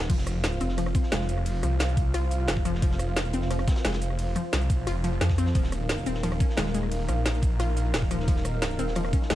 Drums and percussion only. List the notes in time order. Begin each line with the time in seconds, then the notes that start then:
0.00 snare, closed hi-hat
0.10 kick, closed hi-hat, ride, crash
0.18 snare
0.27 cross-stick, closed hi-hat, ride, shaker
0.43 snare, closed hi-hat, ride
0.52 shaker
0.60 closed hi-hat, ride, shaker
0.69 snare
0.78 cross-stick, closed hi-hat, ride
0.86 cross-stick, closed hi-hat
0.95 kick, closed hi-hat, ride, shaker
1.03 snare
1.12 snare, closed hi-hat, ride
1.21 snare
1.29 closed hi-hat, ride, shaker
1.38 cross-stick
1.45 closed hi-hat, open hi-hat, ride
1.63 cross-stick, closed hi-hat, ride, shaker
1.79 snare, closed hi-hat, ride
1.89 closed hi-hat, shaker
1.97 kick, closed hi-hat, ride, shaker
2.14 cross-stick, closed hi-hat, ride
2.31 closed hi-hat, ride, shaker
2.48 snare, closed hi-hat, ride
2.57 kick
2.65 cross-stick, closed hi-hat, ride, shaker
2.75 snare
2.82 kick, closed hi-hat, ride
2.91 snare
2.99 cross-stick, closed hi-hat, ride, shaker
3.16 snare, closed hi-hat, ride
3.25 shaker
3.33 closed hi-hat, ride, shaker
3.42 snare
3.51 cross-stick, closed hi-hat, ride
3.59 cross-stick, closed hi-hat
3.67 kick, snare, closed hi-hat, ride, shaker
3.76 snare, closed hi-hat
3.85 snare, closed hi-hat, ride
3.93 snare, closed hi-hat
4.02 closed hi-hat, ride, shaker
4.10 cross-stick
4.19 closed hi-hat, open hi-hat, ride
4.35 cross-stick, closed hi-hat, ride, shaker
4.53 snare, closed hi-hat, ride
4.61 closed hi-hat, shaker
4.70 kick, closed hi-hat, ride, shaker
4.87 cross-stick, closed hi-hat, ride
5.04 closed hi-hat, ride, shaker
5.21 snare, closed hi-hat, ride
5.29 kick, snare
5.38 cross-stick, closed hi-hat, ride, shaker
5.46 snare
5.55 kick, closed hi-hat, ride
5.63 snare
5.72 cross-stick, closed hi-hat, ride, shaker
5.89 snare, closed hi-hat, ride
5.98 shaker
6.06 closed hi-hat, ride, shaker
6.14 snare
6.23 cross-stick, closed hi-hat, ride
6.32 cross-stick, closed hi-hat
6.40 kick, closed hi-hat, ride, shaker
6.50 snare
6.57 snare, closed hi-hat, ride
6.66 snare
6.75 closed hi-hat, ride, shaker
6.83 cross-stick
6.92 closed hi-hat, open hi-hat, ride
7.09 cross-stick, closed hi-hat, ride, shaker
7.26 snare, closed hi-hat, ride
7.34 closed hi-hat, shaker
7.42 kick, closed hi-hat, ride, shaker
7.60 cross-stick, closed hi-hat, ride
7.77 closed hi-hat, ride, shaker
7.94 snare, closed hi-hat, ride
8.02 kick
8.11 cross-stick, closed hi-hat, ride, shaker
8.20 snare
8.28 kick, closed hi-hat, ride
8.36 snare
8.45 cross-stick, closed hi-hat, ride, shaker
8.62 snare, closed hi-hat, ride
8.71 shaker
8.79 closed hi-hat, ride, shaker
8.88 snare
8.95 cross-stick, closed hi-hat, ride
9.05 cross-stick, closed hi-hat
9.13 kick, closed hi-hat, ride, shaker
9.22 snare
9.30 snare, closed hi-hat, ride